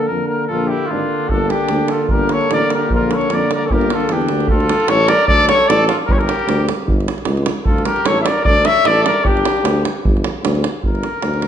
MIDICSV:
0, 0, Header, 1, 7, 480
1, 0, Start_track
1, 0, Tempo, 399467
1, 615, Time_signature, 2, 2, 24, 8
1, 5413, Tempo, 395778
1, 13869, End_track
2, 0, Start_track
2, 0, Title_t, "Cornet"
2, 0, Program_c, 0, 56
2, 87, Note_on_c, 0, 70, 86
2, 314, Note_off_c, 0, 70, 0
2, 321, Note_on_c, 0, 70, 75
2, 553, Note_off_c, 0, 70, 0
2, 561, Note_on_c, 0, 69, 85
2, 805, Note_on_c, 0, 67, 84
2, 823, Note_off_c, 0, 69, 0
2, 1034, Note_on_c, 0, 65, 83
2, 1052, Note_off_c, 0, 67, 0
2, 1550, Note_on_c, 0, 69, 85
2, 1568, Note_off_c, 0, 65, 0
2, 1796, Note_on_c, 0, 67, 93
2, 1814, Note_off_c, 0, 69, 0
2, 2280, Note_on_c, 0, 69, 74
2, 2298, Note_off_c, 0, 67, 0
2, 2506, Note_off_c, 0, 69, 0
2, 2514, Note_on_c, 0, 70, 88
2, 2783, Note_on_c, 0, 73, 98
2, 2801, Note_off_c, 0, 70, 0
2, 3021, Note_off_c, 0, 73, 0
2, 3038, Note_on_c, 0, 74, 104
2, 3252, Note_off_c, 0, 74, 0
2, 3287, Note_on_c, 0, 70, 84
2, 3497, Note_off_c, 0, 70, 0
2, 3538, Note_on_c, 0, 70, 94
2, 3778, Note_on_c, 0, 73, 91
2, 3796, Note_off_c, 0, 70, 0
2, 4011, Note_on_c, 0, 74, 100
2, 4029, Note_off_c, 0, 73, 0
2, 4234, Note_off_c, 0, 74, 0
2, 4264, Note_on_c, 0, 74, 82
2, 4405, Note_on_c, 0, 73, 60
2, 4423, Note_off_c, 0, 74, 0
2, 4483, Note_on_c, 0, 70, 88
2, 4501, Note_off_c, 0, 73, 0
2, 4731, Note_on_c, 0, 69, 92
2, 4749, Note_off_c, 0, 70, 0
2, 4955, Note_on_c, 0, 67, 84
2, 4973, Note_off_c, 0, 69, 0
2, 5398, Note_off_c, 0, 67, 0
2, 5406, Note_on_c, 0, 69, 105
2, 5878, Note_on_c, 0, 73, 123
2, 5896, Note_off_c, 0, 69, 0
2, 6118, Note_on_c, 0, 74, 112
2, 6137, Note_off_c, 0, 73, 0
2, 6338, Note_off_c, 0, 74, 0
2, 6346, Note_on_c, 0, 74, 121
2, 6584, Note_off_c, 0, 74, 0
2, 6592, Note_on_c, 0, 73, 115
2, 6836, Note_on_c, 0, 74, 107
2, 6854, Note_off_c, 0, 73, 0
2, 7058, Note_off_c, 0, 74, 0
2, 7065, Note_on_c, 0, 69, 79
2, 7181, Note_off_c, 0, 69, 0
2, 7293, Note_on_c, 0, 70, 93
2, 7370, Note_on_c, 0, 73, 87
2, 7388, Note_off_c, 0, 70, 0
2, 7452, Note_on_c, 0, 70, 93
2, 7470, Note_off_c, 0, 73, 0
2, 8027, Note_off_c, 0, 70, 0
2, 9227, Note_on_c, 0, 69, 84
2, 9467, Note_on_c, 0, 70, 96
2, 9485, Note_off_c, 0, 69, 0
2, 9722, Note_on_c, 0, 73, 101
2, 9740, Note_off_c, 0, 70, 0
2, 9897, Note_off_c, 0, 73, 0
2, 9904, Note_on_c, 0, 76, 80
2, 9939, Note_on_c, 0, 74, 93
2, 9957, Note_off_c, 0, 76, 0
2, 10180, Note_off_c, 0, 74, 0
2, 10188, Note_on_c, 0, 74, 111
2, 10448, Note_on_c, 0, 76, 121
2, 10466, Note_off_c, 0, 74, 0
2, 10701, Note_on_c, 0, 74, 109
2, 10719, Note_off_c, 0, 76, 0
2, 10910, Note_off_c, 0, 74, 0
2, 10917, Note_on_c, 0, 74, 97
2, 11168, Note_on_c, 0, 67, 94
2, 11187, Note_off_c, 0, 74, 0
2, 11891, Note_off_c, 0, 67, 0
2, 13106, Note_on_c, 0, 70, 85
2, 13869, Note_off_c, 0, 70, 0
2, 13869, End_track
3, 0, Start_track
3, 0, Title_t, "Trumpet"
3, 0, Program_c, 1, 56
3, 592, Note_on_c, 1, 65, 62
3, 835, Note_on_c, 1, 64, 67
3, 853, Note_off_c, 1, 65, 0
3, 1095, Note_on_c, 1, 62, 70
3, 1113, Note_off_c, 1, 64, 0
3, 1577, Note_off_c, 1, 62, 0
3, 1577, Note_on_c, 1, 62, 69
3, 1815, Note_off_c, 1, 62, 0
3, 1815, Note_on_c, 1, 62, 66
3, 2292, Note_on_c, 1, 65, 65
3, 2310, Note_off_c, 1, 62, 0
3, 2535, Note_off_c, 1, 65, 0
3, 2561, Note_on_c, 1, 67, 58
3, 2800, Note_on_c, 1, 69, 64
3, 2818, Note_off_c, 1, 67, 0
3, 3030, Note_off_c, 1, 69, 0
3, 3047, Note_on_c, 1, 70, 75
3, 3258, Note_off_c, 1, 70, 0
3, 3301, Note_on_c, 1, 67, 61
3, 3505, Note_off_c, 1, 67, 0
3, 3518, Note_on_c, 1, 65, 65
3, 3762, Note_on_c, 1, 69, 63
3, 3780, Note_off_c, 1, 65, 0
3, 3992, Note_on_c, 1, 70, 65
3, 4010, Note_off_c, 1, 69, 0
3, 4225, Note_off_c, 1, 70, 0
3, 4240, Note_on_c, 1, 70, 65
3, 4393, Note_on_c, 1, 69, 62
3, 4411, Note_off_c, 1, 70, 0
3, 4453, Note_on_c, 1, 67, 66
3, 4471, Note_off_c, 1, 69, 0
3, 4707, Note_on_c, 1, 65, 70
3, 4725, Note_off_c, 1, 67, 0
3, 4941, Note_on_c, 1, 62, 58
3, 4959, Note_off_c, 1, 65, 0
3, 5404, Note_off_c, 1, 62, 0
3, 5411, Note_on_c, 1, 65, 75
3, 5886, Note_on_c, 1, 69, 95
3, 5904, Note_off_c, 1, 65, 0
3, 6109, Note_on_c, 1, 70, 89
3, 6127, Note_off_c, 1, 69, 0
3, 6353, Note_off_c, 1, 70, 0
3, 6360, Note_on_c, 1, 69, 77
3, 6592, Note_off_c, 1, 69, 0
3, 6602, Note_on_c, 1, 69, 83
3, 6841, Note_off_c, 1, 69, 0
3, 6841, Note_on_c, 1, 69, 100
3, 7071, Note_off_c, 1, 69, 0
3, 7078, Note_on_c, 1, 65, 74
3, 7191, Note_off_c, 1, 65, 0
3, 7332, Note_on_c, 1, 67, 66
3, 7428, Note_on_c, 1, 69, 51
3, 7446, Note_off_c, 1, 67, 0
3, 7514, Note_on_c, 1, 67, 89
3, 7533, Note_off_c, 1, 69, 0
3, 8058, Note_off_c, 1, 67, 0
3, 9270, Note_on_c, 1, 65, 63
3, 9500, Note_on_c, 1, 67, 73
3, 9518, Note_off_c, 1, 65, 0
3, 9740, Note_on_c, 1, 69, 79
3, 9759, Note_off_c, 1, 67, 0
3, 9925, Note_off_c, 1, 69, 0
3, 9937, Note_on_c, 1, 73, 48
3, 10007, Note_on_c, 1, 70, 84
3, 10025, Note_off_c, 1, 73, 0
3, 10217, Note_off_c, 1, 70, 0
3, 10224, Note_on_c, 1, 69, 74
3, 10470, Note_on_c, 1, 73, 79
3, 10488, Note_off_c, 1, 69, 0
3, 10735, Note_on_c, 1, 69, 94
3, 10753, Note_off_c, 1, 73, 0
3, 10943, Note_off_c, 1, 69, 0
3, 10951, Note_on_c, 1, 70, 83
3, 11163, Note_on_c, 1, 62, 63
3, 11182, Note_off_c, 1, 70, 0
3, 11888, Note_off_c, 1, 62, 0
3, 13869, End_track
4, 0, Start_track
4, 0, Title_t, "Euphonium"
4, 0, Program_c, 2, 58
4, 121, Note_on_c, 2, 58, 55
4, 599, Note_off_c, 2, 58, 0
4, 609, Note_on_c, 2, 58, 54
4, 1077, Note_off_c, 2, 58, 0
4, 1084, Note_on_c, 2, 58, 44
4, 1561, Note_off_c, 2, 58, 0
4, 1572, Note_on_c, 2, 58, 65
4, 2046, Note_off_c, 2, 58, 0
4, 2060, Note_on_c, 2, 58, 53
4, 2530, Note_off_c, 2, 58, 0
4, 2535, Note_on_c, 2, 58, 74
4, 3008, Note_off_c, 2, 58, 0
4, 3027, Note_on_c, 2, 58, 59
4, 3494, Note_off_c, 2, 58, 0
4, 3510, Note_on_c, 2, 58, 76
4, 3975, Note_off_c, 2, 58, 0
4, 3988, Note_on_c, 2, 58, 55
4, 4453, Note_off_c, 2, 58, 0
4, 4466, Note_on_c, 2, 58, 71
4, 4923, Note_off_c, 2, 58, 0
4, 4930, Note_on_c, 2, 58, 50
4, 5402, Note_off_c, 2, 58, 0
4, 13869, End_track
5, 0, Start_track
5, 0, Title_t, "Euphonium"
5, 0, Program_c, 3, 58
5, 0, Note_on_c, 3, 50, 64
5, 122, Note_off_c, 3, 50, 0
5, 130, Note_on_c, 3, 50, 65
5, 594, Note_off_c, 3, 50, 0
5, 602, Note_on_c, 3, 50, 55
5, 1080, Note_off_c, 3, 50, 0
5, 1086, Note_on_c, 3, 50, 60
5, 1562, Note_off_c, 3, 50, 0
5, 1584, Note_on_c, 3, 50, 58
5, 2032, Note_off_c, 3, 50, 0
5, 2040, Note_on_c, 3, 50, 70
5, 2510, Note_off_c, 3, 50, 0
5, 2517, Note_on_c, 3, 50, 66
5, 2998, Note_off_c, 3, 50, 0
5, 3009, Note_on_c, 3, 50, 72
5, 3485, Note_off_c, 3, 50, 0
5, 3492, Note_on_c, 3, 50, 70
5, 3966, Note_off_c, 3, 50, 0
5, 3974, Note_on_c, 3, 50, 71
5, 4446, Note_off_c, 3, 50, 0
5, 4462, Note_on_c, 3, 50, 72
5, 4929, Note_off_c, 3, 50, 0
5, 4959, Note_on_c, 3, 50, 66
5, 5417, Note_off_c, 3, 50, 0
5, 13869, End_track
6, 0, Start_track
6, 0, Title_t, "Tuba"
6, 0, Program_c, 4, 58
6, 116, Note_on_c, 4, 41, 61
6, 253, Note_off_c, 4, 41, 0
6, 600, Note_on_c, 4, 34, 71
6, 869, Note_off_c, 4, 34, 0
6, 1079, Note_on_c, 4, 32, 71
6, 1216, Note_off_c, 4, 32, 0
6, 1564, Note_on_c, 4, 31, 80
6, 1832, Note_off_c, 4, 31, 0
6, 2034, Note_on_c, 4, 38, 79
6, 2173, Note_off_c, 4, 38, 0
6, 2524, Note_on_c, 4, 31, 69
6, 2792, Note_off_c, 4, 31, 0
6, 3000, Note_on_c, 4, 33, 75
6, 3138, Note_off_c, 4, 33, 0
6, 3483, Note_on_c, 4, 34, 86
6, 3751, Note_off_c, 4, 34, 0
6, 3963, Note_on_c, 4, 41, 70
6, 4099, Note_off_c, 4, 41, 0
6, 4441, Note_on_c, 4, 31, 94
6, 4709, Note_off_c, 4, 31, 0
6, 4921, Note_on_c, 4, 40, 76
6, 5143, Note_off_c, 4, 40, 0
6, 5165, Note_on_c, 4, 38, 74
6, 5385, Note_off_c, 4, 38, 0
6, 5406, Note_on_c, 4, 38, 80
6, 5673, Note_off_c, 4, 38, 0
6, 5889, Note_on_c, 4, 33, 99
6, 6156, Note_off_c, 4, 33, 0
6, 6362, Note_on_c, 4, 38, 80
6, 6631, Note_off_c, 4, 38, 0
6, 6845, Note_on_c, 4, 33, 105
6, 7113, Note_off_c, 4, 33, 0
6, 7330, Note_on_c, 4, 31, 86
6, 7596, Note_off_c, 4, 31, 0
6, 7802, Note_on_c, 4, 38, 97
6, 8070, Note_off_c, 4, 38, 0
6, 8273, Note_on_c, 4, 31, 87
6, 8544, Note_off_c, 4, 31, 0
6, 8759, Note_on_c, 4, 37, 89
6, 9028, Note_off_c, 4, 37, 0
6, 9248, Note_on_c, 4, 38, 66
6, 9514, Note_off_c, 4, 38, 0
6, 9729, Note_on_c, 4, 33, 81
6, 9995, Note_off_c, 4, 33, 0
6, 10200, Note_on_c, 4, 38, 81
6, 10468, Note_off_c, 4, 38, 0
6, 10682, Note_on_c, 4, 33, 91
6, 10950, Note_off_c, 4, 33, 0
6, 11161, Note_on_c, 4, 31, 74
6, 11429, Note_off_c, 4, 31, 0
6, 11640, Note_on_c, 4, 38, 93
6, 11908, Note_off_c, 4, 38, 0
6, 12129, Note_on_c, 4, 31, 86
6, 12394, Note_off_c, 4, 31, 0
6, 12611, Note_on_c, 4, 38, 96
6, 12876, Note_off_c, 4, 38, 0
6, 13086, Note_on_c, 4, 31, 77
6, 13353, Note_off_c, 4, 31, 0
6, 13566, Note_on_c, 4, 38, 84
6, 13832, Note_off_c, 4, 38, 0
6, 13869, End_track
7, 0, Start_track
7, 0, Title_t, "Davul"
7, 1552, Note_on_c, 9, 43, 65
7, 1672, Note_off_c, 9, 43, 0
7, 1804, Note_on_c, 9, 37, 55
7, 1924, Note_off_c, 9, 37, 0
7, 1929, Note_on_c, 9, 37, 19
7, 2025, Note_off_c, 9, 37, 0
7, 2025, Note_on_c, 9, 37, 62
7, 2145, Note_off_c, 9, 37, 0
7, 2263, Note_on_c, 9, 37, 57
7, 2383, Note_off_c, 9, 37, 0
7, 2508, Note_on_c, 9, 43, 84
7, 2628, Note_off_c, 9, 43, 0
7, 2754, Note_on_c, 9, 37, 53
7, 2874, Note_off_c, 9, 37, 0
7, 2896, Note_on_c, 9, 37, 23
7, 3012, Note_off_c, 9, 37, 0
7, 3012, Note_on_c, 9, 37, 63
7, 3132, Note_off_c, 9, 37, 0
7, 3249, Note_on_c, 9, 37, 57
7, 3369, Note_off_c, 9, 37, 0
7, 3487, Note_on_c, 9, 43, 68
7, 3607, Note_off_c, 9, 43, 0
7, 3733, Note_on_c, 9, 37, 61
7, 3853, Note_off_c, 9, 37, 0
7, 3860, Note_on_c, 9, 37, 24
7, 3967, Note_off_c, 9, 37, 0
7, 3967, Note_on_c, 9, 37, 62
7, 4087, Note_off_c, 9, 37, 0
7, 4214, Note_on_c, 9, 37, 60
7, 4334, Note_off_c, 9, 37, 0
7, 4448, Note_on_c, 9, 43, 76
7, 4569, Note_off_c, 9, 43, 0
7, 4582, Note_on_c, 9, 37, 25
7, 4691, Note_off_c, 9, 37, 0
7, 4691, Note_on_c, 9, 37, 59
7, 4811, Note_off_c, 9, 37, 0
7, 4811, Note_on_c, 9, 37, 24
7, 4915, Note_off_c, 9, 37, 0
7, 4915, Note_on_c, 9, 37, 58
7, 5035, Note_off_c, 9, 37, 0
7, 5065, Note_on_c, 9, 37, 22
7, 5149, Note_off_c, 9, 37, 0
7, 5149, Note_on_c, 9, 37, 52
7, 5270, Note_off_c, 9, 37, 0
7, 5292, Note_on_c, 9, 37, 26
7, 5382, Note_on_c, 9, 43, 83
7, 5412, Note_off_c, 9, 37, 0
7, 5503, Note_off_c, 9, 43, 0
7, 5533, Note_on_c, 9, 37, 31
7, 5643, Note_off_c, 9, 37, 0
7, 5643, Note_on_c, 9, 37, 71
7, 5764, Note_off_c, 9, 37, 0
7, 5771, Note_on_c, 9, 37, 27
7, 5871, Note_off_c, 9, 37, 0
7, 5871, Note_on_c, 9, 37, 76
7, 5992, Note_off_c, 9, 37, 0
7, 6116, Note_on_c, 9, 37, 79
7, 6237, Note_off_c, 9, 37, 0
7, 6354, Note_on_c, 9, 43, 95
7, 6475, Note_off_c, 9, 43, 0
7, 6501, Note_on_c, 9, 37, 34
7, 6604, Note_off_c, 9, 37, 0
7, 6604, Note_on_c, 9, 37, 83
7, 6725, Note_off_c, 9, 37, 0
7, 6743, Note_on_c, 9, 37, 32
7, 6863, Note_off_c, 9, 37, 0
7, 6863, Note_on_c, 9, 37, 80
7, 6984, Note_off_c, 9, 37, 0
7, 7091, Note_on_c, 9, 37, 76
7, 7212, Note_off_c, 9, 37, 0
7, 7332, Note_on_c, 9, 43, 95
7, 7454, Note_off_c, 9, 43, 0
7, 7477, Note_on_c, 9, 37, 30
7, 7576, Note_off_c, 9, 37, 0
7, 7576, Note_on_c, 9, 37, 67
7, 7698, Note_off_c, 9, 37, 0
7, 7701, Note_on_c, 9, 37, 25
7, 7817, Note_off_c, 9, 37, 0
7, 7817, Note_on_c, 9, 37, 70
7, 7938, Note_off_c, 9, 37, 0
7, 8058, Note_on_c, 9, 37, 70
7, 8179, Note_off_c, 9, 37, 0
7, 8300, Note_on_c, 9, 43, 88
7, 8421, Note_off_c, 9, 43, 0
7, 8445, Note_on_c, 9, 37, 30
7, 8538, Note_off_c, 9, 37, 0
7, 8538, Note_on_c, 9, 37, 68
7, 8657, Note_off_c, 9, 37, 0
7, 8657, Note_on_c, 9, 37, 30
7, 8747, Note_off_c, 9, 37, 0
7, 8747, Note_on_c, 9, 37, 69
7, 8868, Note_off_c, 9, 37, 0
7, 8892, Note_on_c, 9, 37, 31
7, 8997, Note_off_c, 9, 37, 0
7, 8997, Note_on_c, 9, 37, 78
7, 9118, Note_off_c, 9, 37, 0
7, 9234, Note_on_c, 9, 43, 92
7, 9355, Note_off_c, 9, 43, 0
7, 9390, Note_on_c, 9, 37, 33
7, 9475, Note_off_c, 9, 37, 0
7, 9475, Note_on_c, 9, 37, 70
7, 9597, Note_off_c, 9, 37, 0
7, 9604, Note_on_c, 9, 37, 30
7, 9719, Note_off_c, 9, 37, 0
7, 9719, Note_on_c, 9, 37, 79
7, 9841, Note_off_c, 9, 37, 0
7, 9962, Note_on_c, 9, 37, 79
7, 10084, Note_off_c, 9, 37, 0
7, 10200, Note_on_c, 9, 43, 93
7, 10321, Note_off_c, 9, 43, 0
7, 10343, Note_on_c, 9, 37, 31
7, 10438, Note_off_c, 9, 37, 0
7, 10438, Note_on_c, 9, 37, 71
7, 10560, Note_off_c, 9, 37, 0
7, 10575, Note_on_c, 9, 37, 28
7, 10686, Note_off_c, 9, 37, 0
7, 10686, Note_on_c, 9, 37, 68
7, 10807, Note_off_c, 9, 37, 0
7, 10935, Note_on_c, 9, 37, 76
7, 11056, Note_off_c, 9, 37, 0
7, 11165, Note_on_c, 9, 43, 85
7, 11287, Note_off_c, 9, 43, 0
7, 11313, Note_on_c, 9, 37, 33
7, 11415, Note_off_c, 9, 37, 0
7, 11415, Note_on_c, 9, 37, 76
7, 11537, Note_off_c, 9, 37, 0
7, 11555, Note_on_c, 9, 37, 26
7, 11654, Note_off_c, 9, 37, 0
7, 11654, Note_on_c, 9, 37, 77
7, 11775, Note_off_c, 9, 37, 0
7, 11899, Note_on_c, 9, 37, 68
7, 12021, Note_off_c, 9, 37, 0
7, 12141, Note_on_c, 9, 43, 109
7, 12263, Note_off_c, 9, 43, 0
7, 12280, Note_on_c, 9, 37, 30
7, 12374, Note_off_c, 9, 37, 0
7, 12374, Note_on_c, 9, 37, 66
7, 12495, Note_off_c, 9, 37, 0
7, 12619, Note_on_c, 9, 37, 79
7, 12741, Note_off_c, 9, 37, 0
7, 12747, Note_on_c, 9, 37, 29
7, 12854, Note_off_c, 9, 37, 0
7, 12854, Note_on_c, 9, 37, 74
7, 12976, Note_off_c, 9, 37, 0
7, 13091, Note_on_c, 9, 43, 73
7, 13213, Note_off_c, 9, 43, 0
7, 13230, Note_on_c, 9, 37, 23
7, 13332, Note_off_c, 9, 37, 0
7, 13332, Note_on_c, 9, 37, 56
7, 13453, Note_off_c, 9, 37, 0
7, 13563, Note_on_c, 9, 37, 61
7, 13684, Note_off_c, 9, 37, 0
7, 13699, Note_on_c, 9, 37, 21
7, 13803, Note_off_c, 9, 37, 0
7, 13803, Note_on_c, 9, 37, 58
7, 13869, Note_off_c, 9, 37, 0
7, 13869, End_track
0, 0, End_of_file